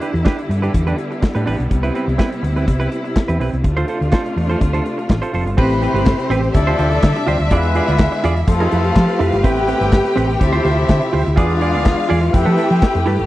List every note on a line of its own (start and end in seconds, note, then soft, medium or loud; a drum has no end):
0.00 1.69 D3 medium
0.00 3.61 G3 medium
0.00 3.61 B3 medium
0.00 0.13 D4 medium
0.00 1.68 E4 medium
0.00 0.13 G4 medium
0.00 0.12 B4 medium
0.00 closed hi-hat medium
0.13 0.23 E2 loud
0.13 muted clean electric guitar stroke soft
0.13 closed hi-hat soft
0.25 0.40 D4 medium
0.25 0.38 G4 medium
0.25 0.37 B4 medium
0.25 kick loud
0.25 snare loud
0.25 clap medium
0.39 muted clean electric guitar stroke soft
0.39 closed hi-hat soft
0.49 0.68 G2 medium
0.49 muted clean electric guitar stroke soft
0.49 closed hi-hat medium
0.62 0.73 D4 soft
0.62 0.73 G4 medium
0.62 0.73 B4 medium
0.62 closed hi-hat soft
0.74 0.92 E2 loud
0.74 muted clean electric guitar stroke soft
0.74 kick loud
0.74 closed hi-hat medium
0.87 0.97 D4 medium
0.87 0.98 G4 medium
0.87 0.98 B4 medium
0.87 closed hi-hat soft
0.98 muted clean electric guitar stroke soft
0.98 closed hi-hat medium
1.11 muted clean electric guitar stroke soft
1.11 closed hi-hat soft
1.22 muted clean electric guitar stroke soft
1.22 kick loud
1.22 snare loud
1.22 clap medium
1.35 1.44 A2 medium
1.35 1.45 D4 medium
1.35 1.46 G4 medium
1.35 1.46 B4 medium
1.35 closed hi-hat medium
1.46 1.57 A1 medium
1.46 1.61 D4 medium
1.46 1.59 G4 medium
1.46 1.57 B4 medium
1.46 open hi-hat medium
1.59 1.68 B1 medium
1.59 muted clean electric guitar stroke soft
1.59 closed hi-hat soft
1.70 1.89 C2 loud
1.70 3.63 C3 medium
1.70 3.63 E4 medium
1.70 muted clean electric guitar stroke soft
1.70 kick medium
1.70 closed hi-hat medium
1.83 1.93 C4 medium
1.83 1.94 E4 medium
1.83 1.95 B4 medium
1.83 closed hi-hat soft
1.94 2.07 C4 medium
1.94 2.07 E4 medium
1.94 2.06 B4 medium
1.94 closed hi-hat medium
2.08 2.16 C2 loud
2.08 muted clean electric guitar stroke soft
2.08 closed hi-hat soft
2.18 2.34 C4 medium
2.18 2.31 E4 loud
2.18 2.30 B4 medium
2.18 kick loud
2.18 snare medium
2.18 clap medium
2.31 muted clean electric guitar stroke soft
2.31 closed hi-hat soft
2.43 2.69 D2 medium
2.43 muted clean electric guitar stroke soft
2.43 closed hi-hat medium
2.56 2.67 C4 soft
2.56 2.67 E4 medium
2.56 2.67 B4 medium
2.56 closed hi-hat soft
2.68 2.86 C2 medium
2.68 muted clean electric guitar stroke soft
2.68 kick loud
2.68 closed hi-hat medium
2.80 2.90 C4 medium
2.80 2.91 E4 medium
2.80 2.91 B4 medium
2.80 closed hi-hat soft
2.91 muted clean electric guitar stroke soft
2.91 closed hi-hat medium
3.04 muted clean electric guitar stroke soft
3.04 closed hi-hat soft
3.16 muted clean electric guitar stroke soft
3.16 kick medium
3.16 snare loud
3.16 clap medium
3.28 3.37 E2 medium
3.28 3.39 C4 medium
3.28 3.39 E4 medium
3.28 3.39 B4 medium
3.28 closed hi-hat medium
3.40 3.50 B1 medium
3.40 3.55 C4 medium
3.40 3.52 E4 medium
3.40 3.51 B4 medium
3.40 open hi-hat medium
3.52 3.62 C2 medium
3.52 muted clean electric guitar stroke soft
3.52 closed hi-hat soft
3.64 3.83 D2 loud
3.64 5.56 C3 medium
3.64 5.56 A3 medium
3.64 5.56 D4 medium
3.64 5.56 F4 medium
3.64 muted clean electric guitar stroke soft
3.64 kick loud
3.64 closed hi-hat medium
3.77 3.87 F4 medium
3.77 3.87 A4 medium
3.77 3.88 C5 medium
3.77 closed hi-hat soft
3.88 4.00 F4 medium
3.88 4.01 A4 medium
3.88 4.00 C5 medium
3.88 closed hi-hat medium
4.01 4.10 D2 loud
4.01 muted clean electric guitar stroke soft
4.01 closed hi-hat soft
4.12 4.27 F4 medium
4.12 4.25 A4 medium
4.12 4.24 C5 medium
4.12 kick loud
4.12 snare loud
4.12 clap medium
4.25 muted clean electric guitar stroke medium
4.25 closed hi-hat soft
4.36 4.55 E2 medium
4.36 muted clean electric guitar stroke soft
4.36 open hi-hat medium
4.49 4.60 F4 medium
4.49 4.61 A4 medium
4.49 4.60 C5 medium
4.49 closed hi-hat soft
4.61 4.79 D2 medium
4.61 muted clean electric guitar stroke soft
4.61 kick loud
4.61 closed hi-hat medium
4.73 4.84 F4 medium
4.73 4.85 A4 medium
4.73 4.85 C5 medium
4.73 closed hi-hat soft
4.86 muted clean electric guitar stroke soft
4.86 closed hi-hat medium
4.98 muted clean electric guitar stroke medium
4.98 closed hi-hat soft
5.09 5.19 A1 loud
5.09 muted clean electric guitar stroke soft
5.09 kick loud
5.09 snare loud
5.09 clap medium
5.22 5.32 F4 medium
5.22 5.33 A4 medium
5.22 5.33 C5 medium
5.22 closed hi-hat medium
5.33 5.46 F1 medium
5.33 5.48 F4 medium
5.33 5.46 A4 medium
5.33 5.45 C5 medium
5.33 open hi-hat medium
5.46 5.55 G1 medium
5.46 muted clean electric guitar stroke soft
5.46 closed hi-hat soft
5.57 5.86 A1 loud
5.57 6.54 C3 medium
5.57 6.29 G3 medium
5.57 6.54 A3 medium
5.57 5.72 C4 medium
5.57 6.54 C4 medium
5.57 6.53 C4 medium
5.57 6.29 E4 medium
5.57 6.54 G4 medium
5.57 5.73 G4 medium
5.57 6.29 B4 medium
5.57 5.73 B4 loud
5.57 6.53 C5 loud
5.57 6.29 B5 medium
5.57 kick loud
5.57 crash loud
5.70 closed hi-hat soft
5.82 5.94 C4 medium
5.82 5.94 G4 medium
5.82 5.93 B4 medium
5.82 closed hi-hat medium
5.94 6.12 G1 loud
5.94 6.06 C4 medium
5.94 6.06 G4 medium
5.94 6.05 B4 medium
5.94 closed hi-hat soft
6.06 kick loud
6.06 snare loud
6.06 clap medium
6.19 muted clean electric guitar stroke soft
6.19 closed hi-hat medium
6.30 6.48 A1 loud
6.30 6.45 C4 loud
6.30 6.43 G4 loud
6.30 6.42 B4 loud
6.30 closed hi-hat medium
6.43 muted clean electric guitar stroke soft
6.43 closed hi-hat soft
6.54 6.73 D2 loud
6.54 7.51 C3 medium
6.54 7.26 F3 medium
6.54 7.51 G3 medium
6.54 7.26 A3 medium
6.54 7.50 D4 medium
6.54 7.26 E4 medium
6.54 7.26 A4 loud
6.54 7.49 D5 medium
6.54 8.46 E5 loud
6.54 muted clean electric guitar stroke soft
6.54 kick loud
6.54 closed hi-hat loud
6.67 6.77 F4 medium
6.67 6.78 G4 medium
6.67 6.78 C5 medium
6.67 closed hi-hat soft
6.78 6.97 D2 medium
6.78 6.90 F4 medium
6.78 6.91 G4 medium
6.78 6.90 C5 medium
6.78 closed hi-hat medium
6.91 muted clean electric guitar stroke soft
6.91 closed hi-hat soft
7.03 7.13 D3 loud
7.03 kick loud
7.03 snare loud
7.03 clap loud
7.16 muted clean electric guitar stroke soft
7.16 closed hi-hat medium
7.26 7.37 D2 medium
7.26 7.42 F4 medium
7.26 7.40 G4 loud
7.26 7.39 C5 loud
7.26 snare soft
7.26 open hi-hat medium
7.40 7.49 D2 medium
7.40 muted clean electric guitar stroke medium
7.40 closed hi-hat soft
7.51 7.79 E2 loud
7.51 8.47 D3 medium
7.51 8.22 G#3 medium
7.51 8.47 G#3 medium
7.51 8.22 B3 medium
7.51 8.46 E4 medium
7.51 7.66 F4 medium
7.51 8.22 F4 medium
7.51 7.66 G#4 medium
7.51 8.22 B4 medium
7.51 7.67 D5 medium
7.51 8.46 E5 loud
7.51 kick loud
7.51 closed hi-hat medium
7.64 closed hi-hat soft
7.75 7.87 F4 medium
7.75 7.87 G#4 medium
7.75 7.87 D5 medium
7.75 closed hi-hat medium
7.88 8.06 D2 loud
7.88 7.99 F4 medium
7.88 7.99 G#4 medium
7.88 7.98 D5 medium
7.88 closed hi-hat soft
7.99 kick loud
7.99 snare loud
7.99 clap medium
8.12 muted clean electric guitar stroke medium
8.12 closed hi-hat medium
8.24 8.42 E2 loud
8.24 8.38 F4 loud
8.24 8.37 G#4 loud
8.24 8.36 D5 loud
8.24 closed hi-hat medium
8.37 muted clean electric guitar stroke soft
8.37 closed hi-hat soft
8.48 8.66 F2 loud
8.48 9.19 F3 medium
8.48 9.44 F3 medium
8.48 9.19 A3 medium
8.48 9.43 A3 medium
8.48 9.19 C4 medium
8.48 9.43 F4 medium
8.48 11.35 G4 loud
8.48 9.19 A4 medium
8.48 10.39 B4 medium
8.48 9.43 F5 medium
8.48 muted clean electric guitar stroke soft
8.48 kick loud
8.48 closed hi-hat loud
8.60 8.70 E4 medium
8.60 8.71 A4 medium
8.60 8.72 B4 medium
8.60 closed hi-hat medium
8.71 8.90 F2 medium
8.71 8.83 E4 medium
8.71 8.84 A4 medium
8.71 8.83 B4 medium
8.71 closed hi-hat medium
8.84 muted clean electric guitar stroke medium
8.84 closed hi-hat soft
8.96 9.06 F3 loud
8.96 kick loud
8.96 snare loud
8.96 clap medium
9.08 muted clean electric guitar stroke soft
9.08 closed hi-hat medium
9.19 9.30 F2 medium
9.19 9.35 E4 medium
9.19 9.32 A4 medium
9.19 9.31 B4 medium
9.19 open hi-hat medium
9.32 9.44 G1 loud
9.32 muted clean electric guitar stroke medium
9.32 closed hi-hat soft
9.43 9.72 A1 loud
9.43 11.35 C3 medium
9.43 10.15 G3 medium
9.43 10.40 A3 medium
9.43 10.15 B3 medium
9.43 9.59 C4 medium
9.43 10.15 E4 medium
9.43 10.39 G4 medium
9.43 9.59 G4 medium
9.43 10.15 B4 medium
9.43 9.59 B4 loud
9.43 10.38 G5 loud
9.43 kick loud
9.43 closed hi-hat medium
9.57 closed hi-hat medium
9.68 9.80 C4 medium
9.68 9.80 G4 medium
9.68 9.79 B4 medium
9.68 closed hi-hat medium
9.80 9.99 G1 loud
9.80 9.92 C4 medium
9.80 9.92 G4 medium
9.80 9.91 B4 medium
9.80 closed hi-hat soft
9.93 kick loud
9.93 snare loud
9.93 clap medium
10.04 muted clean electric guitar stroke medium
10.04 closed hi-hat soft
10.16 10.35 A1 medium
10.16 10.31 C4 medium
10.16 10.29 G4 loud
10.16 10.27 B4 loud
10.16 closed hi-hat medium
10.29 muted clean electric guitar stroke soft
10.29 closed hi-hat soft
10.40 10.59 D2 loud
10.40 11.36 F3 medium
10.40 11.11 A3 medium
10.40 11.11 C4 medium
10.40 11.36 E4 medium
10.40 11.35 E4 medium
10.40 11.12 G4 medium
10.40 11.11 C5 loud
10.40 11.35 E5 medium
10.40 muted clean electric guitar stroke soft
10.40 kick loud
10.40 closed hi-hat loud
10.53 10.63 F4 medium
10.53 10.64 G4 medium
10.53 10.64 C5 loud
10.53 closed hi-hat soft
10.64 10.83 D2 medium
10.64 10.76 F4 medium
10.64 10.77 G4 medium
10.64 10.76 C5 medium
10.64 closed hi-hat medium
10.77 muted clean electric guitar stroke soft
10.77 closed hi-hat soft
10.89 10.99 D3 loud
10.89 kick loud
10.89 snare loud
10.89 clap medium
11.01 muted clean electric guitar stroke soft
11.01 closed hi-hat medium
11.13 11.23 D2 medium
11.13 11.28 F4 medium
11.13 11.25 G4 medium
11.13 11.24 C5 medium
11.13 open hi-hat medium
11.25 11.37 D2 medium
11.25 muted clean electric guitar stroke medium
11.25 closed hi-hat soft
11.36 11.75 E2 loud
11.36 13.26 E3 medium
11.36 12.34 G#3 medium
11.36 12.08 B3 medium
11.36 12.08 D4 medium
11.36 12.34 D4 medium
11.36 11.51 F4 medium
11.36 12.32 F4 medium
11.36 12.33 F4 medium
11.36 11.52 G#4 loud
11.36 12.09 G#4 medium
11.36 11.52 D5 medium
11.36 12.08 D5 medium
11.36 12.32 F5 loud
11.36 kick loud
11.36 closed hi-hat medium
11.50 closed hi-hat soft
11.61 11.73 F4 medium
11.61 11.73 G#4 medium
11.61 11.72 D5 medium
11.61 closed hi-hat medium
11.73 11.93 D2 loud
11.73 11.85 F4 medium
11.73 11.84 G#4 medium
11.73 11.84 D5 medium
11.73 closed hi-hat soft
11.86 kick loud
11.86 snare loud
11.86 clap medium
11.98 muted clean electric guitar stroke soft
11.98 closed hi-hat soft
12.09 12.29 E2 loud
12.09 12.24 F4 loud
12.09 12.22 G#4 loud
12.09 12.21 D5 loud
12.09 open hi-hat medium
12.22 muted clean electric guitar stroke medium
12.22 closed hi-hat soft
12.33 12.43 F2 loud
12.33 13.26 A3 medium
12.33 13.05 C4 medium
12.33 13.05 E4 medium
12.33 13.26 G4 loud
12.33 13.26 G4 medium
12.33 13.26 B4 medium
12.33 13.05 B4 medium
12.33 13.05 E5 medium
12.33 13.26 G5 medium
12.33 muted clean electric guitar stroke soft
12.33 kick loud
12.33 closed hi-hat medium
12.45 12.56 F3 loud
12.45 12.56 E4 medium
12.45 12.57 A4 medium
12.45 12.57 B4 medium
12.45 closed hi-hat soft
12.57 12.69 E4 medium
12.57 12.69 A4 medium
12.57 12.68 B4 medium
12.57 closed hi-hat medium
12.70 12.79 F3 medium
12.70 muted clean electric guitar stroke medium
12.70 closed hi-hat soft
12.82 kick loud
12.82 snare loud
12.82 clap medium
12.94 13.04 F2 loud
12.94 muted clean electric guitar stroke soft
12.94 closed hi-hat medium
13.06 13.16 G2 loud
13.06 13.21 E4 medium
13.06 13.19 A4 medium
13.06 13.18 B4 medium
13.06 open hi-hat medium
13.19 13.26 G1 medium
13.19 muted clean electric guitar stroke medium
13.19 closed hi-hat soft